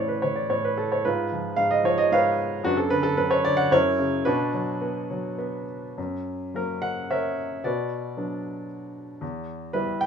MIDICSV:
0, 0, Header, 1, 2, 480
1, 0, Start_track
1, 0, Tempo, 538117
1, 935, Time_signature, 3, 2, 24, 8
1, 4288, Tempo, 574713
1, 6208, Tempo, 530504
1, 8884, End_track
2, 0, Start_track
2, 0, Title_t, "Grand piano"
2, 0, Program_c, 0, 0
2, 0, Control_c, 0, 64, 127
2, 0, Note_on_c, 0, 45, 45
2, 0, Note_on_c, 0, 52, 42
2, 0, Note_on_c, 0, 61, 44
2, 0, Note_on_c, 0, 64, 50
2, 0, Note_on_c, 0, 71, 58
2, 0, Note_on_c, 0, 73, 64
2, 0, Note_on_c, 0, 74, 65
2, 74, Note_off_c, 0, 71, 0
2, 74, Note_on_c, 0, 71, 65
2, 179, Note_off_c, 0, 61, 0
2, 180, Note_off_c, 0, 64, 0
2, 195, Note_off_c, 0, 71, 0
2, 197, Note_off_c, 0, 73, 0
2, 197, Note_on_c, 0, 73, 70
2, 200, Note_off_c, 0, 52, 0
2, 213, Note_on_c, 0, 52, 41
2, 317, Note_off_c, 0, 74, 0
2, 317, Note_on_c, 0, 74, 64
2, 318, Note_off_c, 0, 73, 0
2, 435, Note_off_c, 0, 45, 0
2, 445, Note_on_c, 0, 73, 69
2, 448, Note_on_c, 0, 45, 51
2, 451, Note_off_c, 0, 74, 0
2, 575, Note_off_c, 0, 73, 0
2, 575, Note_on_c, 0, 71, 65
2, 688, Note_off_c, 0, 71, 0
2, 691, Note_on_c, 0, 69, 71
2, 817, Note_off_c, 0, 69, 0
2, 819, Note_on_c, 0, 73, 67
2, 914, Note_off_c, 0, 52, 0
2, 917, Note_off_c, 0, 45, 0
2, 935, Note_on_c, 0, 71, 82
2, 939, Note_on_c, 0, 44, 59
2, 940, Note_off_c, 0, 73, 0
2, 946, Control_c, 0, 64, 0
2, 948, Note_on_c, 0, 65, 61
2, 1112, Control_c, 0, 64, 127
2, 1180, Note_on_c, 0, 53, 47
2, 1373, Note_off_c, 0, 71, 0
2, 1393, Note_off_c, 0, 44, 0
2, 1396, Note_on_c, 0, 77, 88
2, 1407, Note_on_c, 0, 44, 55
2, 1522, Note_on_c, 0, 75, 85
2, 1523, Note_off_c, 0, 77, 0
2, 1615, Note_off_c, 0, 65, 0
2, 1623, Note_off_c, 0, 53, 0
2, 1637, Note_on_c, 0, 53, 48
2, 1646, Note_off_c, 0, 75, 0
2, 1652, Note_on_c, 0, 73, 84
2, 1764, Note_on_c, 0, 75, 87
2, 1772, Note_off_c, 0, 73, 0
2, 1874, Note_off_c, 0, 44, 0
2, 1878, Note_off_c, 0, 75, 0
2, 1888, Note_on_c, 0, 44, 58
2, 1895, Note_on_c, 0, 77, 91
2, 1905, Note_on_c, 0, 71, 68
2, 1908, Note_on_c, 0, 73, 66
2, 2334, Note_off_c, 0, 77, 0
2, 2337, Note_off_c, 0, 53, 0
2, 2339, Note_off_c, 0, 71, 0
2, 2341, Note_off_c, 0, 73, 0
2, 2349, Note_off_c, 0, 44, 0
2, 2352, Note_on_c, 0, 42, 68
2, 2359, Note_on_c, 0, 66, 99
2, 2372, Note_on_c, 0, 59, 68
2, 2375, Control_c, 0, 64, 0
2, 2377, Note_on_c, 0, 62, 67
2, 2469, Note_off_c, 0, 66, 0
2, 2473, Note_on_c, 0, 69, 85
2, 2552, Control_c, 0, 64, 127
2, 2585, Note_off_c, 0, 69, 0
2, 2589, Note_on_c, 0, 71, 99
2, 2599, Note_on_c, 0, 50, 57
2, 2703, Note_off_c, 0, 71, 0
2, 2703, Note_on_c, 0, 69, 96
2, 2821, Note_off_c, 0, 42, 0
2, 2830, Note_on_c, 0, 71, 91
2, 2832, Note_off_c, 0, 69, 0
2, 2834, Note_on_c, 0, 42, 59
2, 2943, Note_off_c, 0, 71, 0
2, 2949, Note_on_c, 0, 73, 94
2, 3044, Note_off_c, 0, 59, 0
2, 3046, Note_off_c, 0, 62, 0
2, 3064, Note_off_c, 0, 50, 0
2, 3073, Note_on_c, 0, 74, 102
2, 3076, Note_off_c, 0, 73, 0
2, 3078, Note_on_c, 0, 50, 50
2, 3182, Note_on_c, 0, 78, 97
2, 3199, Note_off_c, 0, 74, 0
2, 3295, Note_off_c, 0, 42, 0
2, 3308, Note_on_c, 0, 42, 75
2, 3311, Note_off_c, 0, 50, 0
2, 3314, Note_off_c, 0, 78, 0
2, 3319, Note_on_c, 0, 73, 100
2, 3327, Control_c, 0, 64, 0
2, 3329, Note_on_c, 0, 64, 68
2, 3330, Note_on_c, 0, 70, 70
2, 3498, Control_c, 0, 64, 127
2, 3561, Note_on_c, 0, 49, 59
2, 3776, Note_off_c, 0, 64, 0
2, 3776, Note_off_c, 0, 70, 0
2, 3784, Note_off_c, 0, 42, 0
2, 3791, Note_on_c, 0, 71, 97
2, 3797, Note_off_c, 0, 49, 0
2, 3800, Note_on_c, 0, 66, 67
2, 3801, Note_on_c, 0, 62, 71
2, 3804, Note_on_c, 0, 47, 76
2, 3814, Control_c, 0, 64, 0
2, 3819, Note_off_c, 0, 73, 0
2, 3999, Control_c, 0, 64, 127
2, 4048, Note_on_c, 0, 54, 58
2, 4295, Note_on_c, 0, 59, 63
2, 4524, Note_off_c, 0, 54, 0
2, 4536, Note_on_c, 0, 54, 53
2, 4757, Note_off_c, 0, 59, 0
2, 4770, Note_on_c, 0, 59, 61
2, 4984, Note_off_c, 0, 71, 0
2, 4988, Note_off_c, 0, 62, 0
2, 4988, Note_off_c, 0, 66, 0
2, 5232, Note_off_c, 0, 47, 0
2, 5250, Note_off_c, 0, 54, 0
2, 5250, Note_off_c, 0, 59, 0
2, 5267, Note_on_c, 0, 42, 53
2, 5275, Control_c, 0, 64, 0
2, 5403, Control_c, 0, 64, 127
2, 5738, Note_on_c, 0, 54, 41
2, 5746, Note_on_c, 0, 61, 42
2, 5747, Note_on_c, 0, 58, 38
2, 5751, Note_on_c, 0, 70, 74
2, 5966, Note_on_c, 0, 78, 84
2, 5990, Note_off_c, 0, 70, 0
2, 6207, Note_on_c, 0, 76, 80
2, 6208, Note_on_c, 0, 73, 57
2, 6210, Note_off_c, 0, 78, 0
2, 6215, Note_on_c, 0, 70, 58
2, 6661, Note_off_c, 0, 42, 0
2, 6661, Note_off_c, 0, 76, 0
2, 6662, Note_off_c, 0, 73, 0
2, 6664, Note_off_c, 0, 54, 0
2, 6666, Note_off_c, 0, 70, 0
2, 6668, Note_off_c, 0, 61, 0
2, 6669, Note_off_c, 0, 58, 0
2, 6693, Note_on_c, 0, 74, 71
2, 6697, Note_on_c, 0, 47, 58
2, 6700, Note_on_c, 0, 66, 52
2, 6704, Note_on_c, 0, 71, 54
2, 6710, Control_c, 0, 64, 0
2, 6889, Control_c, 0, 64, 127
2, 7171, Note_on_c, 0, 54, 44
2, 7175, Note_on_c, 0, 59, 38
2, 7180, Note_on_c, 0, 62, 45
2, 7615, Note_off_c, 0, 74, 0
2, 7618, Note_off_c, 0, 66, 0
2, 7621, Note_off_c, 0, 71, 0
2, 8088, Note_off_c, 0, 47, 0
2, 8093, Note_off_c, 0, 54, 0
2, 8095, Note_off_c, 0, 59, 0
2, 8097, Note_off_c, 0, 62, 0
2, 8114, Note_on_c, 0, 40, 64
2, 8134, Control_c, 0, 64, 0
2, 8298, Control_c, 0, 64, 127
2, 8585, Note_on_c, 0, 71, 78
2, 8595, Note_on_c, 0, 55, 49
2, 8595, Note_on_c, 0, 59, 44
2, 8598, Note_on_c, 0, 64, 55
2, 8833, Note_on_c, 0, 79, 95
2, 8847, Note_off_c, 0, 71, 0
2, 8884, Note_off_c, 0, 40, 0
2, 8884, Note_off_c, 0, 55, 0
2, 8884, Note_off_c, 0, 59, 0
2, 8884, Note_off_c, 0, 64, 0
2, 8884, Note_off_c, 0, 79, 0
2, 8884, End_track
0, 0, End_of_file